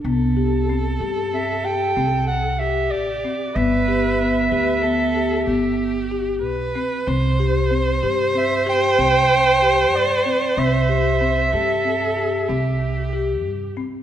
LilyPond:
<<
  \new Staff \with { instrumentName = "Soprano saxophone" } { \time 11/8 \key c \lydian \tempo 4 = 94 r2 e''8 g''4 fis''8 e''8 d''4 | e''1 r4. | r2 e''8 g''2 d''4 | e''1~ e''8 r4 | }
  \new Staff \with { instrumentName = "Viola" } { \time 11/8 \key c \lydian a'1 g'4. | b'4. b'8 a'4 g'4. b'4 | c''1~ c''4.~ | c''4. a'4. g'2 r8 | }
  \new Staff \with { instrumentName = "Marimba" } { \time 11/8 \key c \lydian b8 g'8 c'8 g'8 c'8 g'8 c'4 g'4 c'8 | b8 g'8 b8 g'8 b8 g'8 b4 g'4 c'8 | c'8 g'8 c'8 g'8 c'8 g'8 c'4 g'4 c'8 | c'8 g'8 c'8 g'8 c'8 g'8 c'4 g'4 c'8 | }
  \new Staff \with { instrumentName = "Upright bass" } { \clef bass \time 11/8 \key c \lydian c,4. g,4. c,4. a,,8 r8 | g,,4. d,4. g,,4. b,,8 r8 | c,4. g,4. c,4. g,8 r8 | c,4. g,4. c,4. g,8 r8 | }
>>